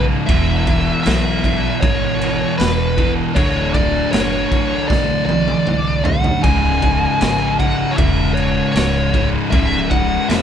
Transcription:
Already playing: upright bass B1, distorted electric guitar C#2 G#2 C#3
0.27 upright bass E1, distorted electric guitar E2 B2 E3, lead electric guitar E5, kick, crash
0.67 kick, crash
1.03 upright bass B1, lead electric guitar E5, snare, crash
1.44 kick, crash
1.81 upright bass G#1, lead electric guitar C#5, kick, crash
2.21 crash
2.58 upright bass E1, lead electric guitar B4, snare, crash
2.98 distorted electric guitar E2 B2 E3, kick, crash
3.35 upright bass D1, distorted electric guitar D2 A2 D3, lead electric guitar C#5, kick, crash
3.74 lead electric guitar D5, kick, crash
4.12 upright bass F#1, lead electric guitar C#5, snare, crash
4.51 upright bass A1, kick, crash
4.88 upright bass B1, lead electric guitar D5, kick, snare
5.26 lead electric guitar D5, high tom
5.48 high tom
5.67 upright bass C2, mid tom
6.04 distorted electric guitar D2 A2 D3, lead electric guitar F#5, floor tom
6.24 floor tom
6.43 upright bass C#1, distorted electric guitar C#2 G#2 C#3, lead electric guitar G#5, kick, crash
6.82 kick, crash
7.21 upright bass G#1, snare, crash
7.59 lead electric guitar F#5, kick, crash
7.91 lead electric guitar C#5
7.97 upright bass E1, lead electric guitar E5, kick, crash
8.34 lead electric guitar C#5, crash
8.72 upright bass C#1, lead electric guitar C#5, crash
8.77 snare
9.14 distorted electric guitar C#2 G#2 C#3, kick, crash
9.51 upright bass C#1, distorted electric guitar C#2 G#2 C#3, lead electric guitar E5, kick, crash
9.90 lead electric guitar F#5, kick, crash
10.28 upright bass E1, lead electric guitar E5, snare, crash

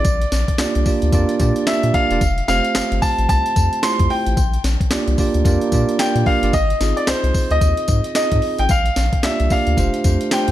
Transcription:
Already playing: grand piano D5
0.05 analog synth bass A#1, kick, closed hi-hat, tambourine
0.21 closed hi-hat
0.32 analog synth bass A#1, snare, closed hi-hat, tambourine
0.48 kick, closed hi-hat
0.58 analog synth bass C2, tine electric piano A#3 D4 F4 G4 D5, snare, clap, closed hi-hat, tambourine
0.75 analog synth bass C2, closed hi-hat
0.86 tine electric piano A#3 D4 F4 G4 D5, kick, open hi-hat, tambourine
1.02 analog synth bass D2, closed hi-hat
1.12 analog synth bass F2, tine electric piano A#3 D4 F4 G4 D5, kick, closed hi-hat, tambourine
1.29 closed hi-hat
1.40 analog synth bass A#2, tine electric piano A#3 D4 F4 G4 D5, kick, closed hi-hat, tambourine
1.56 closed hi-hat
1.67 tine electric piano A#3 D4 F4 G4 D5, grand piano E5, snare, clap, closed hi-hat, tambourine
1.83 analog synth bass A#2, closed hi-hat
1.94 tine electric piano A#3 D4 F4 G4 D5, grand piano F5, kick, closed hi-hat
2.11 analog synth bass E1, tine electric piano A#3 D4 F4 G4 D5, closed hi-hat
2.21 analog synth bass F1, kick, closed hi-hat, tambourine
2.38 closed hi-hat
2.48 analog synth bass F1, tine electric piano A3 C4 F4 G4 C5, grand piano F5, snare, closed hi-hat, tambourine
2.65 closed hi-hat
2.75 analog synth bass G1, snare, clap, closed hi-hat, tambourine
2.92 analog synth bass G1, closed hi-hat
3.02 grand piano A5, kick, open hi-hat, tambourine
3.18 analog synth bass A1, closed hi-hat
3.29 analog synth bass C2, grand piano A5, kick, closed hi-hat, tambourine
3.46 closed hi-hat
3.56 analog synth bass F2, kick, closed hi-hat, tambourine
3.73 closed hi-hat
3.83 tine electric piano A3 E4 F4 G4 C5, grand piano C6, snare, clap, closed hi-hat, tambourine
3.99 analog synth bass F2, kick, closed hi-hat
4.10 grand piano G5, open hi-hat
4.26 analog synth bass A1, closed hi-hat
4.37 analog synth bass A#1, kick, closed hi-hat, tambourine
4.53 closed hi-hat
4.64 analog synth bass A#1, snare, closed hi-hat, tambourine
4.80 kick, closed hi-hat
4.91 analog synth bass C2, tine electric piano A#3 D4 F4 G4 D5, snare, clap, closed hi-hat, tambourine
5.08 analog synth bass C2, closed hi-hat
5.18 tine electric piano A#3 D4 F4 G4 D5, kick, open hi-hat, tambourine
5.34 analog synth bass D2, closed hi-hat
5.45 analog synth bass F2, tine electric piano A#3 D4 F4 G4 D5, kick, closed hi-hat, tambourine
5.61 closed hi-hat
5.72 analog synth bass A#2, tine electric piano A#3 D4 F4 G4 D5, kick, closed hi-hat, tambourine
5.89 closed hi-hat
5.99 tine electric piano A#3 D4 F4 G4 D5, grand piano G5, snare, clap, closed hi-hat, tambourine
6.15 analog synth bass A#2, closed hi-hat
6.26 tine electric piano A#3 D4 F4 G4 D5, grand piano F5, kick, open hi-hat
6.43 analog synth bass G1, tine electric piano A#3 D4 F4 G4 D5, closed hi-hat
6.53 analog synth bass G#1, grand piano D#5, kick, closed hi-hat, tambourine
6.70 closed hi-hat
6.81 analog synth bass G#1, tine electric piano C4 D#4 F4 G#4 D#5, snare, closed hi-hat, tambourine
6.97 grand piano D5, closed hi-hat
7.07 analog synth bass C2, grand piano C5, snare, clap, closed hi-hat, tambourine
7.24 analog synth bass C2, closed hi-hat
7.34 kick, open hi-hat, tambourine
7.51 analog synth bass D2, grand piano D#5, closed hi-hat
7.61 analog synth bass D#2, kick, closed hi-hat, tambourine
7.77 closed hi-hat
7.88 analog synth bass G#2, kick, closed hi-hat, tambourine
8.04 closed hi-hat
8.15 tine electric piano C4 D#4 F4 G#4 D#5, grand piano D#5, snare, clap, closed hi-hat, tambourine
8.32 analog synth bass G#2, kick, closed hi-hat
8.42 open hi-hat
8.58 analog synth bass A1, grand piano G5, closed hi-hat
8.69 analog synth bass A#1, grand piano F5, kick, closed hi-hat, tambourine
8.86 closed hi-hat
8.96 analog synth bass A#1, snare, closed hi-hat, tambourine
9.13 kick, closed hi-hat
9.23 analog synth bass C2, tine electric piano A#3 D4 F4 G4 D5, grand piano E5, snare, clap, closed hi-hat, tambourine
9.40 analog synth bass C2, closed hi-hat
9.50 tine electric piano A#3 D4 F4 G4 D5, grand piano F5, kick, open hi-hat, tambourine
9.67 analog synth bass D2, closed hi-hat
9.77 analog synth bass F1, tine electric piano A3 D4 F4 G4 C5, kick, closed hi-hat, tambourine
9.94 closed hi-hat
10.04 analog synth bass F2, tine electric piano A3 D4 F4 G4 C5, kick, closed hi-hat, tambourine
10.21 closed hi-hat
10.31 tine electric piano A3 D4 F4 G4 C5, grand piano G5, snare, clap, closed hi-hat, tambourine
10.48 analog synth bass F2, closed hi-hat

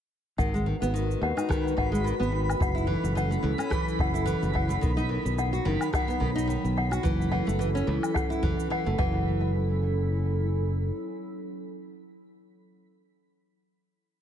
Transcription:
0.38 fingered electric bass G#1, nylon-string guitar D#3, ambient pad G#3 D#4 F#4 B4, toy piano F#5, synth texture B5, kick, cabasa
0.54 nylon-string guitar G#3, cabasa
0.66 nylon-string guitar D#3
0.82 fingered electric bass G#1, nylon-string guitar B3, cabasa
0.94 nylon-string guitar D#3, cabasa
1.11 cabasa
1.22 fingered electric bass D#2, toy piano F#5
1.37 nylon-string guitar D#4, cabasa, low woodblock
1.49 nylon-string guitar D#3, kick, cross-stick, cabasa
1.68 cabasa
1.77 fingered electric bass G#1, nylon-string guitar D#3, toy piano F#5, kick
1.92 nylon-string guitar G#3, cabasa
2.04 nylon-string guitar D#3, cabasa
2.20 fingered electric bass G#1, nylon-string guitar B3, cabasa
2.32 nylon-string guitar D#3
2.49 cabasa, low woodblock
2.60 fingered electric bass F#1, ambient pad F#3 C#4 E4 A4, toy piano F#5, kick, cabasa
2.75 nylon-string guitar E4, cabasa
2.87 nylon-string guitar E3
3.04 fingered electric bass F#1, cabasa
3.15 nylon-string guitar E3, toy piano F#5, cabasa
3.31 nylon-string guitar A3, cabasa
3.43 fingered electric bass C#2, nylon-string guitar E3
3.58 nylon-string guitar C#4, cabasa, low woodblock
3.70 nylon-string guitar E3, kick, cross-stick, cabasa
3.88 cabasa
3.99 fingered electric bass F#1, toy piano F#5, kick
4.14 nylon-string guitar E4, cabasa
4.26 nylon-string guitar E3, cabasa
4.43 fingered electric bass F#1, cabasa
4.54 nylon-string guitar E3, toy piano F#5, kick
4.69 nylon-string guitar A3, cabasa
4.81 fingered electric bass B1, nylon-string guitar D#3, ambient pad B3 D#4, kick, cabasa
4.97 nylon-string guitar D#4, cabasa
5.09 nylon-string guitar D#3
5.25 fingered electric bass B1, cabasa
5.38 toy piano F#5, cabasa
5.53 nylon-string guitar F#4, cabasa
5.65 fingered electric bass F#1, nylon-string guitar D#3
5.81 cabasa, low woodblock
5.93 nylon-string guitar D#3, toy piano F#5, kick, cross-stick, cabasa
6.08 nylon-string guitar B3, cabasa
6.20 fingered electric bass B1, nylon-string guitar D#3, kick
6.35 nylon-string guitar D#4, cabasa
6.47 nylon-string guitar D#3, cabasa
6.64 fingered electric bass B1, cabasa
6.78 toy piano F#5
6.91 nylon-string guitar F#4, cabasa, low woodblock
7.03 fingered electric bass F#1, nylon-string guitar E3, ambient pad C#4 E4 A4, kick, cabasa
7.22 cabasa
7.31 nylon-string guitar E3, toy piano F#5
7.47 fingered electric bass F#1, nylon-string guitar A3, cabasa
7.59 nylon-string guitar E3, cabasa
7.75 nylon-string guitar C#4, cabasa
7.87 fingered electric bass C#2, nylon-string guitar E3
8.03 cabasa, low woodblock
8.14 toy piano F#5, kick, cross-stick, cabasa
8.30 nylon-string guitar E4, cabasa
8.43 fingered electric bass F#1, nylon-string guitar E3, kick
8.60 cabasa
8.70 nylon-string guitar E3, toy piano F#5
8.86 fingered electric bass F#1, nylon-string guitar A3
8.98 fingered electric bass F#1, nylon-string guitar E3, ambient pad F#3 C#4 E4 A4, toy piano F#5, kick

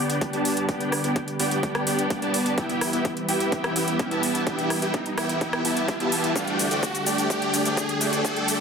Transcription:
Already playing: analog synth bass G1, analog synth pad D3 G3 B3 G4 B4, supersaw synth B3 D4 G4 D5 G5, riser
0.10 closed hi-hat
0.21 kick, closed hi-hat
0.33 analog synth bass G1, supersaw synth B3 D4 G4 D5 A5, closed hi-hat
0.45 open hi-hat
0.57 closed hi-hat
0.69 analog synth bass G1, supersaw synth B3 D4 G4 D5 G5, kick, closed hi-hat
0.80 closed hi-hat
0.92 cross-stick, open hi-hat
1.04 analog synth bass G1, supersaw synth B3 D4 G4 D5 G5, closed hi-hat
1.16 kick, closed hi-hat
1.28 closed hi-hat
1.40 analog synth bass G1, supersaw synth B3 D4 G4 D5 G5, open hi-hat
1.51 closed hi-hat
1.63 kick, closed hi-hat
1.75 cross-stick, closed hi-hat
1.87 analog synth bass G1, supersaw synth B3 D4 G4 D5 G5, open hi-hat
1.99 closed hi-hat
2.10 kick, closed hi-hat
2.22 analog synth bass G1, supersaw synth B3 D4 G4 D5 A5, closed hi-hat
2.34 open hi-hat
2.46 closed hi-hat
2.58 analog synth bass E1, analog synth pad E3 B4, supersaw synth B3 E4 G4 E5 G5, kick, closed hi-hat
2.69 closed hi-hat
2.81 cross-stick, open hi-hat
2.93 analog synth bass E1, supersaw synth B3 E4 G4 E5 G5, closed hi-hat
3.05 kick, closed hi-hat
3.17 closed hi-hat
3.29 analog synth bass E1, supersaw synth B3 E4 G4 E5 G5, open hi-hat
3.40 closed hi-hat
3.52 kick, closed hi-hat
3.64 cross-stick, closed hi-hat
3.76 analog synth bass E1, supersaw synth B3 E4 G4 E5 G5, open hi-hat
3.88 closed hi-hat
3.99 kick, closed hi-hat
4.11 analog synth bass E1, supersaw synth B3 E4 G4 E5 A5, closed hi-hat
4.23 open hi-hat
4.35 closed hi-hat
4.47 analog synth bass E1, supersaw synth B3 E4 G4 E5 G5, kick, closed hi-hat
4.59 closed hi-hat
4.70 cross-stick, open hi-hat
4.82 analog synth bass E1, supersaw synth B3 E4 G4 E5 G5, closed hi-hat
4.94 kick, closed hi-hat
5.06 closed hi-hat
5.17 analog synth bass E1, supersaw synth B3 E4 G4 E5 G5, cross-stick, open hi-hat
5.29 closed hi-hat
5.41 kick, closed hi-hat
5.53 cross-stick, closed hi-hat
5.65 analog synth bass E1, supersaw synth B3 E4 G4 E5 A5, open hi-hat
5.77 closed hi-hat
5.88 kick, closed hi-hat
6.00 analog synth bass E2, supersaw synth B3 E4 G4 E5 A5, closed hi-hat
6.12 open hi-hat
6.24 closed hi-hat
6.36 analog synth bass D2, analog synth pad D3 A3 G4 A4, supersaw synth A3 D4 G4 D5 G5, kick, closed hi-hat, shaker
6.47 closed hi-hat
6.59 open hi-hat, shaker
6.71 analog synth bass D2, supersaw synth A3 D4 G4 D5 G5, closed hi-hat, shaker
6.83 kick, closed hi-hat, shaker
6.95 closed hi-hat, shaker
7.06 analog synth bass D2, supersaw synth A3 D4 G4 D5 G5, open hi-hat, shaker
7.18 closed hi-hat, shaker
7.30 analog synth bass D2, supersaw synth A3 D4 G4 D5 G5, kick, closed hi-hat, shaker
7.42 closed hi-hat
7.54 open hi-hat, shaker
7.65 analog synth bass D2, supersaw synth A3 D4 G4 D5 G5, closed hi-hat, shaker
7.77 kick, closed hi-hat, shaker
7.89 closed hi-hat
8.01 analog synth bass D2, supersaw synth A3 D4 G4 D5 G5, open hi-hat, shaker
8.13 closed hi-hat, shaker
8.24 analog synth bass D2, supersaw synth A3 D4 G4 D5 G5, kick, closed hi-hat, shaker
8.37 closed hi-hat
8.48 open hi-hat, shaker

